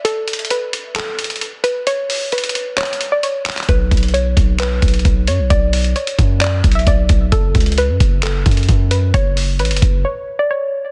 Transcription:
<<
  \new Staff \with { instrumentName = "Synth pluck" } { \time 4/4 \key b \minor \tempo 4 = 132 a'4 b'4 a'4. b'8 | cis''4 b'4 cis''8. d''16 cis''4 | b'4 cis''4 b'4. cis''8 | d''4 cis''4 d''8. e''16 d''8 r8 |
a'4 b'4 a'4. b'8 | cis''4 b'4 cis''8. d''16 cis''4 | }
  \new Staff \with { instrumentName = "808-style bass" } { \clef bass \time 4/4 \key b \minor r1 | r1 | b,,8 b,,4 b,,4 b,,8 b,,8 fis,16 b,,16 | b,,4 r8 fis,4 b,,8 b,,8 b,,8 |
fis,,8 cis,8. fis,16 fis,,4 fis,8 fis,4 | fis,,4 a,,16 fis,,16 fis,,8 r2 | }
  \new DrumStaff \with { instrumentName = "Drums" } \drummode { \time 4/4 hh8 hh32 hh32 hh32 hh32 hh8 hh8 <hc hh>8 hh32 hh32 hh32 hh32 hh8 hh8 | hh8 hho8 hh32 hh32 hh32 hh32 hh8 \tuplet 3/2 { <hc hh>16 hh16 hh16 hh16 r16 r16 } hh8 <hc hh>32 hh32 <hc hh>32 hh32 | <hh bd>8 <hh bd>32 hh32 hh32 hh32 hh8 <hh bd>8 <hc hh>8 <hh bd>32 hh32 hh32 hh32 <hh bd>8 hh8 | <hh bd>8 <hh hho>16 hh16 hh16 hh16 <hh bd>8 \tuplet 3/2 { <hc hh>16 r16 r16 <hh bd>16 hh16 hh16 } <hh bd>8 <hh bd>8 |
<hh bd>8 <hh bd>32 hh32 hh32 hh32 hh8 <hh bd>8 <hc hh>8 <hh bd>32 hh32 hh32 hh32 <hh bd>8 hh8 | <hh bd>8 hho8 hh32 hh32 hh32 hh32 <hh bd>8 r4 r4 | }
>>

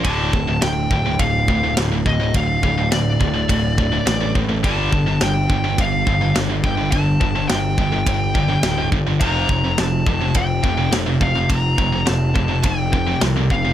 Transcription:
<<
  \new Staff \with { instrumentName = "Lead electric guitar" } { \time 4/4 \key d \minor \tempo 4 = 105 a''4 g''4 f''4 r8 ees''8 | f''4 d''2~ d''8 r8 | a''4 g''4 f''4 r8 g''8 | a''4 g''2~ g''8 r8 |
bes''4 a''4 g''4 r8 f''8 | bes''4 a''4 g''4 r8 f''8 | }
  \new Staff \with { instrumentName = "Distorted electric guitar" } { \clef bass \time 4/4 \key d \minor <d, a, d>8 <d, a,>16 <d, a,>16 <d, a,>8 <d, a,>16 <d, a,>16 <d, a,>8 <d, a,>16 <d, a,>16 <d, a,>16 <d, a,>16 <d, a,>16 <d, a,>16 | <d, a,>8 <d, a,>16 <d, a,>16 <d, a,>8 <d, a,>16 <d, a,>16 <d, a,>8 <d, a,>16 <d, a,>16 <d, a,>16 <d, a,>16 <d, a,>16 <d, a,>16 | <g, d g>8 <g, d>16 <g, d>16 <g, d>8 <g, d>16 <g, d>16 <g, d>8 <g, d>16 <g, d>16 <g, d>16 <g, d>16 <g, d>16 <g, d>16 | <g, d>8 <g, d>16 <g, d>16 <g, d>8 <g, d>16 <g, d>16 <g, d>8 <g, d>16 <g, d>16 <g, d>16 <g, d>16 <g, d>16 <g, d>16 |
<f, c f>8 <f, c>16 <f, c>16 <f, c>8 <f, c>16 <f, c>16 <f, c>8 <f, c>16 <f, c>16 <f, c>16 <f, c>16 <f, c>16 <f, c>16 | <f, c>8 <f, c>16 <f, c>16 <f, c>8 <f, c>16 <f, c>16 <f, c>8 <f, c>16 <f, c>16 <f, c>16 <f, c>16 <f, c>16 <f, c>16 | }
  \new Staff \with { instrumentName = "Picked electric bass" } { \clef bass \time 4/4 \key d \minor d,,8 d,,8 d,,8 d,,8 d,,8 d,,8 d,,8 d,,8 | d,,8 d,,8 d,,8 d,,8 d,,4 a,,8 a,,8 | g,,8 g,,8 g,,8 g,,8 g,,8 g,,8 g,,8 g,,8 | g,,8 g,,8 g,,8 g,,8 g,,4 d,,8 g,,8 |
f,,8 f,,8 f,,8 f,,8 f,,8 f,,8 f,,8 f,,8 | f,,8 f,,8 f,,8 f,,8 f,,4 c,8 f,,8 | }
  \new DrumStaff \with { instrumentName = "Drums" } \drummode { \time 4/4 <bd rb>8 bd8 <rb sn>8 bd8 <bd rb>8 bd8 <rb sn>8 bd8 | <bd rb>8 bd8 <rb sn>8 bd8 <bd rb>8 bd8 <rb sn>8 bd8 | <bd rb>8 bd8 <rb sn>8 bd8 <bd rb>8 bd8 <rb sn>8 bd8 | <bd rb>8 bd8 <rb sn>8 bd8 <bd rb>8 bd8 <rb sn>8 bd8 |
<bd rb>8 bd8 <rb sn>8 bd8 <bd rb>8 bd8 <rb sn>8 bd8 | <bd rb>8 bd8 <rb sn>8 bd8 <bd rb>8 bd8 <rb sn>8 bd8 | }
>>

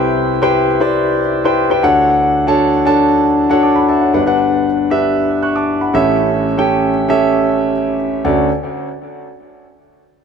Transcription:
<<
  \new Staff \with { instrumentName = "Grand piano" } { \time 4/4 \key d \major \tempo 4 = 117 << { r1 | r2. <a'' d'''>16 <fis'' b''>16 <e'' a''>16 <cis'' fis''>16~ | <cis'' fis''>16 r2 r16 <cis''' fis'''>16 <a'' d'''>8 <fis'' b''>8 r16 | r1 |
r1 | } \\ { <e' g' b' c'' g''>8 r16 <e' g' b' c'' g''>8 r16 <e' g' b' c'' d''>8. r8 <e' g' b' c'' g''>16 r16 <e' g' b' c'' g''>16 <d' fis' a' cis'' fis''>8~ | <d' fis' a' cis'' fis''>8 r16 <d' fis' a' cis'' a''>8 r16 <d' fis' a' cis'' a''>8. r8 <d' fis' a' cis'' fis''>16 r4 | <d' g' b' fis''>16 <d' g' b' fis''>8. r8 <d' g' b' e''>4~ <d' g' b' e''>16 r8. <cis' g' a' e''>8~ | <cis' g' a' e''>8 r16 <cis' g' a' g''>8 r8 <cis' g' a' e''>4~ <cis' g' a' e''>16 r4 |
<cis' fis' a' d''>8 r2. r8 | } >> }
  \new Staff \with { instrumentName = "Grand piano" } { \clef bass \time 4/4 \key d \major <c, c>2.~ <c, c>8 <d, d>8~ | <d, d>2.~ <d, d>8 r8 | <g,, g,>2.~ <g,, g,>8 <a,, a,>8~ | <a,, a,>2.~ <a,, a,>8 r8 |
d,8 r2. r8 | }
>>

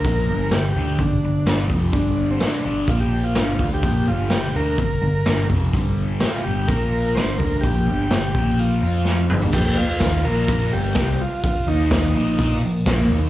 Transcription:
<<
  \new Staff \with { instrumentName = "Transistor combo organ" } { \time 4/4 \key g \minor \tempo 4 = 126 bes'4 g'4 d'4. r8 | d'8. c'16 d'8 d'8 f'16 g'8 f'16 f'8. g'16~ | g'8 f'8 g'8 bes'8 bes'4. r8 | r4 g'16 f'16 g'8 bes'4 c''8 bes'8 |
g'2 f'4. r8 | g'8 f'4 bes'4 g'4 f'8 | f'8 ees'2 r4. | }
  \new Staff \with { instrumentName = "Overdriven electric guitar" } { \clef bass \time 4/4 \key g \minor <bes, f bes>8 <g, d g>8 <g, d>8 <d a d'>8 <g, d>8 <g, d>8 <g, d g>8 <f, c f>8 | <g, d g>4 <a, e a>8 <g, d g>8 <bes, f bes>4 <g, d g>8 <d a d'>8 | <bes, f bes>8 <g, d g>8 <g, d>8 <d a d'>8 <g, d>8 <g, d>8 <g, d g>8 <f, c f>8 | <g, d g>4 <a, e a>8 <g, d g>8 <bes, f bes>4 <g, d g>8 <d a d'>8 |
<bes, f bes>8 <g, d g>8 <g, d>8 <bes, f bes>4 <f c' f'>4 <g, d g>8 | <bes, f bes>8 r8 <ees bes ees'>8 <bes, f bes>4 <g, d g>8 <c g c'>8 r8 | r8 <ees bes ees'>4 <bes, f bes>8 <bes f' bes'>8 <bes, f>8 <bes, f bes>8 <ees bes ees'>8 | }
  \new Staff \with { instrumentName = "Picked electric bass" } { \clef bass \time 4/4 \key g \minor bes,,8 g,,8 g,,8 d,8 g,,8 g,,8 g,,8 f,,8 | g,,4 a,,8 g,,8 bes,,4 g,,8 d,8 | bes,,8 g,,8 g,,8 d,8 g,,8 g,,8 g,,8 f,,8 | g,,4 a,,8 g,,8 bes,,4 g,,8 d,8 |
bes,,8 g,,8 g,,8 bes,,4 f,4 g,,8 | bes,,8 r8 ees,8 bes,,4 g,,8 c,8 r8 | r8 ees,4 bes,,8 bes,8 bes,,8 bes,,8 ees,8 | }
  \new DrumStaff \with { instrumentName = "Drums" } \drummode { \time 4/4 <hho bd>4 <hho sn>4 <hho bd>4 <hho sn>8 bd8 | <hho bd>4 <hho sn>4 <hho bd>4 <hho sn>8 bd8 | <hho bd>4 <hho sn>4 <hho bd>4 <hho sn>8 bd8 | <hho bd>4 <hho sn>4 <hho bd>4 <hho sn>8 bd8 |
<hho bd>4 <hho sn>8 bd8 hho4 sn8 toml16 tomfh16 | <cymc bd>4 <hho bd sn>4 <hho bd>4 <hho bd sn>4 | <hho bd>4 <hho bd sn>4 <hho bd>4 <hho bd sn>4 | }
>>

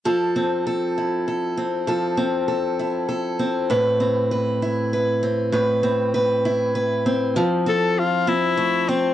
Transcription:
<<
  \new Staff \with { instrumentName = "Tenor saxophone" } { \time 6/8 \key f \lydian \tempo 4. = 66 r2. | r2. | r2. | r2. |
r8 a'8 f'8 e'4 c'8 | }
  \new Staff \with { instrumentName = "Steel-string acoustic guitar" } { \time 6/8 \key f \lydian <f a'>8 c'8 a'8 e'8 a'8 c'8 | <f a'>8 c'8 a'8 e'8 a'8 c'8 | <a, b'>8 c'8 b'8 e'8 b'8 c'8 | <a, b'>8 c'8 b'8 e'8 b'8 c'8 |
f8 c'4 c'8 a8 c'8 | }
>>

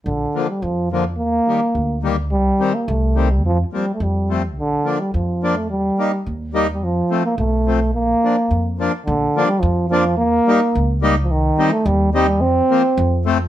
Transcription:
<<
  \new Staff \with { instrumentName = "Accordion" } { \time 2/4 \key bes \major \tempo 4 = 107 r8 <d f bes>8 r8 <d f bes>8 | r8 <ees g bes>8 r8 <ees g bes>8 | r8 <ees g c'>8 r8 <ees g c'>8 | r8 <f bes c'>8 r8 <f a c'>8 |
r8 <f bes d'>8 r8 <f bes d'>8 | r8 <g bes ees'>8 r8 <g bes ees'>8 | r8 <f a c'>8 r8 <f a c'>8 | r8 <f bes d'>8 r8 <f bes d'>8 |
r8 <f bes d'>8 r8 <f bes d'>8 | r8 <g bes ees'>8 r8 <g bes ees'>8 | r8 <g c' ees'>8 r8 <g c' ees'>8 | r8 <f bes c'>8 r8 <f a c'>8 | }
  \new Staff \with { instrumentName = "Euphonium" } { \clef bass \time 2/4 \key bes \major d8. g16 f8 f8 | bes4. r8 | g8. bes16 a8. g16 | f8 g16. a32 g8. r16 |
d8. g16 f8. a16 | g4 r8. r32 g32 | f8. bes16 a4 | bes4. r8 |
d8. g16 f8 f8 | bes4. r16. f32 | ees8. a16 g8 g8 | c'4. r8 | }
  \new Staff \with { instrumentName = "Upright bass" } { \clef bass \time 2/4 \key bes \major bes,,8 r8 f,4 | ees,8 r8 d,4 | c,8 r8 c,4 | f,8 r8 f,4 |
bes,,8 r8 f,4 | ees,8 r8 ees,4 | f,8 r8 ces,4 | bes,,8 r8 f,4 |
bes,,8 r8 f,4 | ees,8 r8 des,4 | c,8 r8 ees,4 | f,8 r8 f,4 | }
>>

